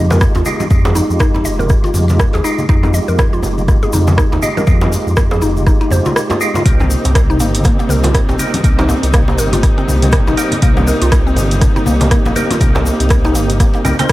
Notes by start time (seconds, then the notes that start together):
Already playing: F2 G#3 D#4 F4 G4
0.10 A#4, djembe slap, muted conga, djembe tone, high conga, shaker
0.21 kick, cross-stick, shaker
0.35 D#2 F4, muted conga, djembe slap, djembe tone, shaker
0.45 G#3 D#4 F4 G4, high conga, shaker
0.60 low conga, shaker
0.70 F2 G#3 D#4 F4 G4, kick, muted conga, djembe tone, shaker
0.85 G#4, djembe slap, low conga, shaker
0.95 D#4, muted conga, djembe tone, shaker
1.10 F2, shaker
1.19 D#4, kick, cross-stick, muted conga, shaker
1.34 D#4, djembe slap, djembe tone, shaker
1.45 F1 D#5, muted conga, shaker
1.59 A#4, djembe tone, high conga, shaker
1.69 kick, cross-stick, shaker
1.84 F4, muted conga, shaker
1.94 F2, djembe tone, high conga, shaker
2.08 muted conga, high conga, shaker
2.19 kick, cross-stick, djembe tone, shaker
2.33 D#2 G#4, muted conga, djembe slap, high conga, shaker
2.44 G#3 D#4 F4 G4, shaker
2.58 high conga, djembe tone, shaker
2.69 F2 G#3 D#4 F4 G4, kick, muted conga, shaker
2.83 D#4, djembe tone, low conga, shaker
2.94 D#5, muted conga, shaker
3.08 F2 A#4, shaker
3.18 kick, cross-stick, muted conga, djembe tone, shaker
3.33 F4, shaker
3.43 F1, muted conga, djembe tone, shaker
3.58 high conga, shaker
3.68 kick, cross-stick, high conga, shaker
3.83 G#4, muted conga, djembe tone, shaker
3.93 F2 D#4, high conga, shaker
4.07 djembe slap, muted conga, djembe tone, high conga, shaker
4.18 D#4, kick, cross-stick, shaker
4.32 D#2 D#4, muted conga, djembe slap, shaker
4.42 G#3 D#4 F4 G4 D#5, djembe tone, high conga, shaker
4.57 A#4, low conga, shaker
4.67 F2 G#3 D#4 F4 G4, kick, muted conga, djembe tone, shaker
4.81 F4, djembe slap, low conga, shaker
4.93 muted conga, shaker
5.07 F2, djembe tone, shaker
5.17 kick, cross-stick, muted conga, shaker
5.31 G#4, djembe slap, djembe tone, shaker
5.41 F1 D#4, muted conga, shaker
5.57 high conga, shaker
5.67 D#4, kick, cross-stick, djembe tone, shaker
5.81 D#4, muted conga, shaker
5.91 F2 C5, high conga, djembe tone, shaker
6.05 F4, muted conga, high conga, shaker
6.16 cross-stick, shaker
6.30 F4, muted conga, djembe slap, high conga, djembe tone, shaker
6.41 G#3 D#4 F4 G4, shaker
6.54 F4, djembe slap, djembe tone, high conga, shaker
6.66 C2 C3 G3 A#3 C4 D#4 G4, kick, closed hi-hat, muted conga, shaker
6.80 C4, djembe tone, low conga, shaker
6.90 muted conga, shaker
7.05 C2, closed hi-hat, djembe tone, shaker
7.15 kick, cross-stick, closed hi-hat, muted conga, shaker
7.30 D#4, shaker
7.40 G1 A#3, closed hi-hat, muted conga, djembe tone, shaker
7.55 closed hi-hat, high conga, shaker
7.64 A#3, kick, cross-stick, closed hi-hat, djembe tone, high conga, shaker
7.79 A#3, muted conga, shaker
7.89 C2 A#4, high conga, shaker
8.03 F4, closed hi-hat, muted conga, djembe slap, djembe tone, high conga, shaker
8.14 kick, cross-stick, closed hi-hat, shaker
8.29 A#1 C4, djembe slap, muted conga, djembe tone, shaker
8.39 A#3 C4 D#4 G4, closed hi-hat, high conga, shaker
8.54 closed hi-hat, low conga, shaker
8.64 C2 A#3 C4 D#4 G4, kick, closed hi-hat, muted conga, djembe tone, shaker
8.78 D#4, djembe slap, low conga, shaker
8.89 A#3, muted conga, djembe tone, shaker
9.03 C2, closed hi-hat, shaker
9.13 A#3, kick, cross-stick, closed hi-hat, muted conga, shaker
9.28 A#3, djembe slap, djembe tone, shaker
9.38 G1 A#4, closed hi-hat, muted conga, shaker
9.53 F4, closed hi-hat, djembe tone, high conga, shaker
9.63 kick, cross-stick, closed hi-hat, shaker
9.78 C4, muted conga, shaker
9.88 C2, djembe tone, high conga, shaker
10.02 closed hi-hat, muted conga, high conga, shaker
10.12 kick, cross-stick, closed hi-hat, djembe tone, shaker
10.27 A#1 D#4, muted conga, djembe slap, high conga, shaker
10.37 A#3 C4 D#4 G4, closed hi-hat, shaker
10.51 closed hi-hat, high conga, djembe tone, shaker
10.62 C2 A#3 C4 D#4 G4, kick, closed hi-hat, muted conga, shaker
10.77 A#3, djembe tone, low conga, shaker
10.87 A#4, muted conga, shaker
11.02 C2 F4, closed hi-hat, shaker
11.12 kick, cross-stick, closed hi-hat, muted conga, djembe tone, shaker
11.27 C4, shaker
11.36 G1, closed hi-hat, muted conga, djembe tone, shaker
11.51 closed hi-hat, high conga, shaker
11.61 kick, cross-stick, closed hi-hat, high conga, shaker
11.76 D#4, muted conga, djembe tone, shaker
11.86 C2 A#3, high conga, shaker
12.00 closed hi-hat, muted conga, djembe slap, high conga, djembe tone, shaker
12.11 A#3, kick, cross-stick, closed hi-hat, shaker
12.25 A#1 A#3, muted conga, djembe slap, shaker
12.35 A#3 C4 D#4 G4 A#4, closed hi-hat, djembe tone, high conga, shaker
12.50 F4, closed hi-hat, low conga, shaker
12.60 C2 A#3 C4 D#4 G4, kick, closed hi-hat, muted conga, djembe tone, shaker
12.75 C4, djembe slap, low conga, shaker
12.86 muted conga, shaker
13.00 C2, closed hi-hat, djembe tone, shaker
13.09 kick, cross-stick, closed hi-hat, muted conga, shaker
13.24 D#4, djembe slap, djembe tone, shaker
13.35 G1 A#3, closed hi-hat, muted conga, shaker
13.50 closed hi-hat, high conga, shaker
13.60 A#3, kick, cross-stick, closed hi-hat, djembe tone, shaker
13.74 A#3, muted conga, shaker
13.85 C2 A#3 C4 D#4 G4, closed hi-hat, high conga, djembe tone, shaker
13.99 A#3 C4 D#4 C5, closed hi-hat, muted conga, high conga, shaker
14.09 shaker